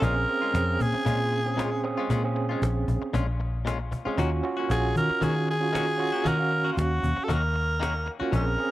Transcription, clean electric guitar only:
0.02 0.16 A#2 medium
0.02 0.16 G#3 medium
0.02 0.15 C#4 medium
0.02 0.15 F4 medium
0.16 muted clean electric guitar stroke soft
0.28 muted clean electric guitar stroke soft
0.42 0.53 G#3 soft
0.42 0.54 C#4 soft
0.42 0.54 F4 soft
0.94 muted clean electric guitar stroke soft
1.06 1.20 A#2 medium
1.06 1.20 G#3 medium
1.06 1.19 C#4 medium
1.06 1.19 F4 medium
1.20 muted clean electric guitar stroke soft
1.32 muted clean electric guitar stroke soft
1.57 1.72 A#2 medium
1.57 1.72 G#3 medium
1.57 1.71 C#4 medium
1.57 1.70 F4 medium
1.71 muted clean electric guitar stroke soft
1.84 muted clean electric guitar stroke soft
1.98 2.09 G#3 soft
1.98 2.10 C#4 soft
1.98 2.10 F4 medium
2.10 2.24 A#2 medium
2.10 2.24 G#3 medium
2.10 2.23 C#4 medium
2.10 2.23 F4 medium
2.24 muted clean electric guitar stroke soft
2.36 muted clean electric guitar stroke soft
2.49 2.61 G#3 soft
2.49 2.62 C#4 medium
2.49 2.62 F4 medium
2.62 muted clean electric guitar stroke soft
3.02 muted clean electric guitar stroke soft
3.13 3.28 A#2 medium
3.13 3.28 G#3 medium
3.13 3.27 C#4 medium
3.13 3.26 F4 medium
3.27 muted clean electric guitar stroke soft
3.40 muted clean electric guitar stroke soft
3.65 3.79 A#2 medium
3.65 3.79 G#3 medium
3.65 3.79 C#4 medium
3.65 3.78 F4 medium
3.79 muted clean electric guitar stroke soft
3.91 muted clean electric guitar stroke soft
4.05 4.17 G#3 soft
4.05 4.18 C#4 soft
4.05 4.18 F4 soft
4.18 4.32 D#3 medium
4.18 4.32 A#3 medium
4.18 4.31 C#4 medium
4.18 4.30 F#4 medium
4.31 muted clean electric guitar stroke soft
4.44 muted clean electric guitar stroke soft
4.57 4.69 A#3 soft
4.57 4.70 C#4 soft
4.57 4.70 F#4 medium
4.70 muted clean electric guitar stroke soft
5.10 muted clean electric guitar stroke soft
5.21 5.35 D#3 medium
5.21 5.35 A#3 medium
5.21 5.35 C#4 medium
5.21 5.34 F#4 medium
5.35 muted clean electric guitar stroke soft
5.47 muted clean electric guitar stroke soft
5.73 5.87 D#3 medium
5.73 5.87 A#3 medium
5.73 5.86 C#4 medium
5.73 5.85 F#4 medium
5.87 muted clean electric guitar stroke soft
5.99 muted clean electric guitar stroke soft
6.12 6.24 A#3 soft
6.12 6.25 C#4 soft
6.12 6.25 F#4 soft
6.24 6.39 D#3 medium
6.24 6.39 A#3 medium
6.24 6.38 C#4 medium
6.24 6.37 F#4 medium
6.38 muted clean electric guitar stroke soft
6.51 muted clean electric guitar stroke soft
6.64 6.76 A#3 soft
6.64 6.77 C#4 soft
6.64 6.77 F#4 medium
6.77 muted clean electric guitar stroke soft
7.17 muted clean electric guitar stroke soft
7.29 7.43 D#3 medium
7.29 7.43 A#3 medium
7.29 7.42 C#4 medium
7.29 7.42 F#4 medium
7.43 muted clean electric guitar stroke soft
7.54 muted clean electric guitar stroke soft
7.80 7.95 D#3 medium
7.80 7.95 A#3 medium
7.80 7.94 C#4 medium
7.80 7.93 F#4 medium
7.94 muted clean electric guitar stroke soft
8.06 muted clean electric guitar stroke soft
8.20 8.32 A#3 soft
8.20 8.32 C#4 soft
8.20 8.33 F#4 soft
8.32 8.46 A#2 medium
8.32 8.46 F3 medium
8.32 8.45 G#3 medium
8.32 8.45 C#4 medium
8.46 muted clean electric guitar stroke soft
8.58 muted clean electric guitar stroke soft

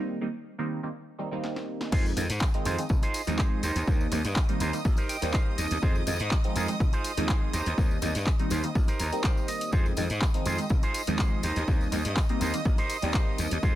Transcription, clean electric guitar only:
1.92 2.05 D#4 loud
1.92 2.05 F4 medium
1.92 2.05 G#4 loud
1.92 2.05 C5 loud
2.17 muted clean electric guitar stroke medium
2.29 muted clean electric guitar stroke soft
2.65 2.78 D#4 medium
2.65 2.78 F4 medium
2.65 2.78 G#4 medium
2.65 2.79 C5 loud
2.90 muted clean electric guitar stroke soft
3.02 3.21 D#4 loud
3.02 3.21 F4 loud
3.02 3.21 G#4 loud
3.02 3.21 C5 loud
3.38 3.62 D#4 medium
3.38 3.63 F4 medium
3.38 3.63 G#4 medium
3.38 3.63 C5 medium
3.63 4.03 D#4 medium
3.63 4.03 G4 medium
3.63 4.03 A#4 medium
3.63 4.03 C5 medium
4.12 muted clean electric guitar stroke medium
4.25 muted clean electric guitar stroke soft
4.60 4.73 D#4 medium
4.60 4.74 G4 medium
4.60 4.74 A#4 medium
4.60 4.74 C5 medium
4.85 muted clean electric guitar stroke soft
4.97 5.16 D#4 loud
4.97 5.16 G4 medium
4.97 5.16 A#4 loud
4.97 5.16 C5 loud
5.09 5.32 G5 medium
5.33 5.58 D#4 medium
5.33 5.58 G4 medium
5.33 5.58 A#4 medium
5.33 5.58 C5 loud
5.33 5.56 F5 medium
5.58 5.81 D#5 medium
5.82 5.95 D#4 loud
5.82 5.95 F4 medium
5.82 5.95 G#4 loud
5.82 5.95 C5 loud
6.07 muted clean electric guitar stroke medium
6.19 muted clean electric guitar stroke soft
6.56 6.68 D#4 medium
6.56 6.69 F4 medium
6.56 6.69 G#4 medium
6.56 6.69 A#4 loud
6.80 muted clean electric guitar stroke soft
6.93 7.11 D#4 loud
6.93 7.11 F4 loud
6.93 7.11 G#4 loud
6.93 7.11 C5 loud
7.29 7.52 D#4 medium
7.29 7.53 F4 medium
7.29 7.53 G#4 medium
7.29 7.53 C5 medium
7.53 7.93 D#4 medium
7.53 7.93 G4 medium
7.53 7.93 A#4 medium
7.53 7.93 C5 loud
8.02 muted clean electric guitar stroke medium
8.15 muted clean electric guitar stroke soft
8.51 8.63 D#4 medium
8.51 8.64 G4 medium
8.51 8.64 A#4 medium
8.51 8.64 C5 loud
8.75 muted clean electric guitar stroke soft
8.87 9.06 D#4 loud
8.87 9.06 G4 medium
8.87 9.06 A#4 loud
8.87 9.06 C5 loud
8.99 9.22 A#5 medium
9.23 9.48 D#4 medium
9.23 9.48 G4 medium
9.23 9.49 A#4 medium
9.23 9.49 C5 loud
9.23 9.47 G5 medium
9.48 9.71 D#5 medium
9.72 9.85 D#4 loud
9.72 9.86 F4 medium
9.72 9.86 G#4 loud
9.72 9.86 C5 loud
9.97 muted clean electric guitar stroke medium
10.10 muted clean electric guitar stroke soft
10.46 10.59 D#4 medium
10.46 10.59 F4 medium
10.46 10.59 G#4 medium
10.46 10.59 C5 loud
10.70 muted clean electric guitar stroke soft
10.83 11.01 D#4 loud
10.83 11.01 F4 loud
10.83 11.01 G#4 loud
10.83 11.01 C5 loud
11.18 11.42 D#4 medium
11.18 11.43 F4 medium
11.18 11.43 G#4 medium
11.18 11.42 C5 medium
11.43 11.83 D#4 medium
11.43 11.83 G4 medium
11.43 11.83 A#4 medium
11.43 11.83 C5 medium
11.92 muted clean electric guitar stroke medium
12.05 muted clean electric guitar stroke soft
12.40 12.54 D#4 medium
12.40 12.54 G4 medium
12.40 12.54 A#4 medium
12.40 12.54 C5 medium
12.65 muted clean electric guitar stroke soft
12.78 12.96 D#4 loud
12.78 12.96 G4 loud
12.78 12.96 A#4 loud
12.78 12.96 C5 loud
13.14 13.38 D#4 medium
13.14 13.38 G4 medium
13.14 13.39 A#4 medium
13.14 13.39 C5 loud
13.63 13.75 D#4 loud
13.63 13.75 F4 loud
13.63 13.75 G#4 medium
13.63 13.75 C5 loud

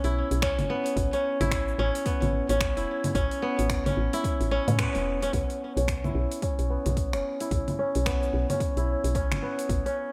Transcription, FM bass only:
0.04 0.23 B1 medium
0.31 0.60 B1 medium
0.58 0.67 F#1 medium
0.97 1.09 A1 loud
1.41 1.74 A1 medium
1.79 1.91 A1 medium
2.22 2.41 A1 medium
2.49 2.78 A1 medium
2.77 2.85 E1 loud
3.15 3.27 A1 loud
3.59 3.93 A1 medium
3.97 4.09 A1 medium
4.41 4.60 A1 medium
4.68 4.87 A2 loud
4.95 5.29 E1 medium
5.33 5.46 B1 medium
5.77 6.11 B1 loud
6.15 6.27 B1 medium
6.59 6.78 B1 medium
6.86 7.15 B1 medium
7.13 7.21 F#1 medium
7.51 7.64 B1 loud
7.96 8.29 B1 medium
8.33 8.46 B1 medium
8.77 8.96 B1 medium
9.04 9.33 B1 medium
9.31 9.40 F#1 medium
9.69 9.82 A1 loud

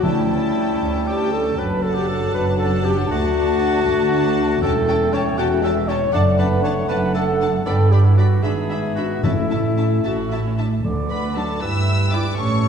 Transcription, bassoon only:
0.04 1.56 G3 medium
1.57 3.07 F#3 medium
3.11 4.60 A3 medium
4.63 5.96 A3 medium
6.13 7.63 A3 medium
7.66 8.40 B3 medium
8.44 9.26 B3 medium
9.24 10.58 A3 soft
10.84 11.58 D3 soft
11.61 12.68 E3 soft

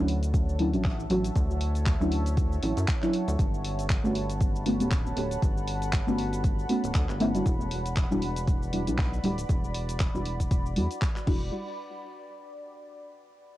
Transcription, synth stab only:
0.00 0.56 F#3 medium
0.00 0.57 C#4 medium
0.00 0.57 D4 medium
0.00 0.57 E4 medium
0.59 0.70 F#3 medium
0.59 0.70 C#4 medium
0.59 0.70 D4 medium
0.59 0.70 E4 medium
0.73 0.98 F#3 medium
0.73 0.98 C#4 medium
0.73 0.98 D4 medium
0.73 0.98 F#4 medium
1.09 1.97 F#3 medium
1.09 1.97 C#4 medium
1.09 1.98 D4 medium
1.09 1.98 F#4 medium
2.00 2.60 F#3 medium
2.00 2.60 C#4 medium
2.00 2.60 D4 medium
2.00 2.61 E4 medium
2.62 2.99 F#3 medium
2.62 2.99 C#4 medium
2.62 2.99 D4 medium
2.62 2.99 E4 medium
3.02 3.38 F#3 medium
3.02 3.38 C#4 medium
3.02 3.38 D4 medium
3.02 3.38 E4 loud
4.03 4.63 A3 medium
4.03 4.63 B3 medium
4.03 4.64 C#4 medium
4.03 4.64 F#4 medium
4.66 4.77 A3 medium
4.66 4.77 B3 medium
4.66 4.77 C#4 medium
4.66 4.77 F#4 medium
4.80 5.05 A3 medium
4.80 5.05 B3 medium
4.80 5.05 C#4 medium
4.80 5.05 G4 medium
5.16 6.04 A3 medium
5.16 6.04 B3 medium
5.16 6.04 C#4 medium
5.16 6.05 G4 medium
6.07 6.66 A3 medium
6.07 6.67 B3 medium
6.07 6.67 C#4 medium
6.07 6.67 F#4 medium
6.69 6.94 A3 medium
6.69 6.94 B3 medium
6.69 6.94 C#4 medium
6.69 6.94 F#4 medium
7.20 7.31 A3 loud
7.20 7.31 B3 medium
7.20 7.31 C#4 medium
7.20 7.32 E4 loud
7.35 7.59 G3 medium
7.35 7.59 D4 medium
7.35 7.59 E4 medium
7.35 7.60 F#4 loud
8.10 8.70 G3 medium
8.10 8.70 D4 medium
8.10 8.71 E4 medium
8.10 8.71 F#4 medium
8.73 8.84 G3 medium
8.73 8.84 D4 medium
8.73 8.84 E4 medium
8.73 8.84 F#4 medium
8.87 9.12 G3 medium
8.87 9.12 D4 medium
8.87 9.12 E4 medium
8.87 9.12 G4 medium
9.23 10.11 G3 medium
9.23 10.11 D4 medium
9.23 10.11 E4 medium
9.23 10.11 G4 medium
10.14 10.73 G3 medium
10.14 10.74 D4 medium
10.14 10.74 E4 medium
10.14 10.74 F#4 medium
10.76 11.01 G3 medium
10.76 11.01 D4 medium
10.76 11.01 E4 medium
10.76 11.01 F#4 medium
11.26 11.46 G3 medium
11.26 11.47 D4 medium
11.26 11.47 E4 medium
11.26 11.47 F#4 loud

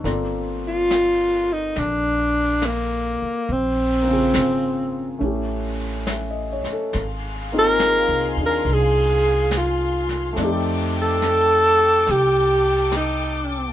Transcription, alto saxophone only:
0.68 1.54 F4 medium
1.53 1.80 D#4 medium
1.78 2.67 D4 medium
2.66 3.54 A#3 medium
3.52 5.22 C4 medium
7.59 8.38 A#4 loud
8.46 8.75 A#4 medium
8.73 9.59 G#4 medium
9.58 10.41 F4 medium
11.02 12.12 A4 loud
12.11 12.94 G4 medium
12.97 13.73 D#4 medium

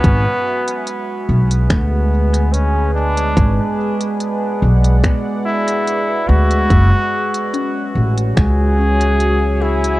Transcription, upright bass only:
0.04 0.23 G#1 loud
1.29 1.66 B1 medium
1.70 3.33 D2 medium
3.37 3.56 G#1 loud
4.62 4.99 B1 medium
6.29 6.66 D2 loud
6.70 6.90 F#1 medium
7.95 8.32 A1 medium
8.37 10.00 C#2 loud

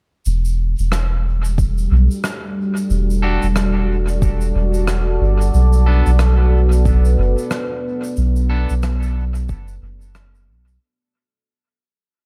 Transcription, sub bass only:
0.26 0.75 E1 loud
0.79 1.89 E1 medium
1.91 2.08 B1 medium
2.90 3.39 E1 loud
3.43 4.52 E1 medium
4.55 5.18 E1 medium
5.21 5.51 G1 medium
5.54 6.03 B1 loud
6.06 7.16 B1 medium
7.18 7.36 F#1 medium
8.17 8.66 B1 loud
8.70 9.49 B1 medium
9.49 9.79 F#1 medium
9.82 10.50 F#1 medium
10.48 10.78 B1 medium

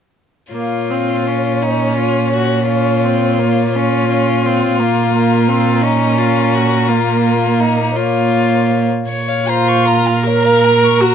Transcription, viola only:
0.52 0.92 A#3 soft
0.90 1.28 C4 soft
1.27 2.69 C#4 soft
2.69 3.06 C#4 soft
3.05 3.41 C4 soft
3.39 3.77 A#3 soft
3.75 4.09 C#4 soft
4.10 4.47 C#4 soft
4.46 4.81 C4 soft
4.79 5.13 A#3 soft
5.14 5.50 A#3 soft
5.48 5.84 C4 soft
5.82 6.90 C#4 soft
6.89 7.95 A#3 soft
7.96 8.86 A#3 soft
9.48 10.22 F4 soft
10.27 11.03 A#4 medium
11.01 11.15 F#4 soft

